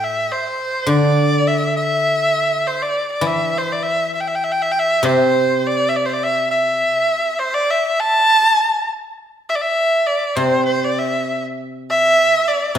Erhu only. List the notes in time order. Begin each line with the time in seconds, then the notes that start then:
0.04 E5
0.31 C5
0.89 D5
1.47 E5
1.76 E5
2.67 C5
2.82 D5
3.12 D5
3.27 E5
3.58 C5
3.72 D5
3.83 E5
4.15 E5
4.20 G5
4.28 E5
4.35 G5
4.44 E5
4.52 G5
4.62 E5
4.72 G5
4.79 E5
5.05 C5
5.67 D5
5.89 E5
5.96 D5
6.06 C5
6.13 D5
6.24 E5
6.51 E5
7.39 C5
7.54 D5
7.71 E5
8.00 A5
9.49 E5
9.56 D5
9.61 E5
10.07 D5
10.36 C5
10.66 C5
10.84 D5
10.99 E5
11.91 E5
12.48 D5